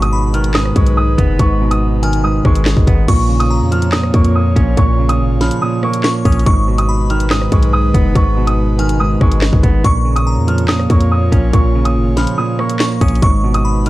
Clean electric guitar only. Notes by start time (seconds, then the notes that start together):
Already playing: G#2 B2
0.34 D#3
0.54 G#2
0.76 G#3
1.18 B3
1.40 G#2
1.61 B2
2.03 D#3
2.24 G#2
2.45 G#3
2.87 B3
3.09 A#2
3.29 C#3
3.72 F3
3.93 A#2
4.14 A#3
4.56 C#4
4.77 A#2
4.99 C#3
5.41 F3
5.62 A#2
5.83 A#3
6.25 C#4
6.46 G#2
6.68 B2
7.10 D#3
7.30 G#2
7.52 G#3
7.94 B3
8.16 G#2
8.37 B2
8.79 D#3
9.00 G#2
9.21 G#3
9.63 B3
9.85 A#2
10.05 C#3
10.48 F3
10.69 A#2
10.90 A#3
11.32 C#4
11.54 A#2
11.75 C#3
12.17 F3
12.38 A#2
12.59 A#3
13.01 C#4
13.22 G#2
13.44 B2
13.86 D#3